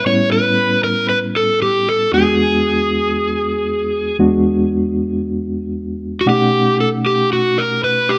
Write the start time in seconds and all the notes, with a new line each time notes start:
0.05 A2 G3 B3 C#4 E4 C#5
0.32 B4
0.84 A#4
1.09 B4
1.36 A4
1.62 G4
1.89 A4
2.12 E2 G#3 B3 D4 F#4 G#4
4.19 E2 G#3 B3 D4 F#4
6.21 F#4
6.26 B2 A3 C#4 D#4 G4 F#5
6.80 A4
7.06 G4
7.33 F#4
7.58 A#4
7.84 B4
8.09 G4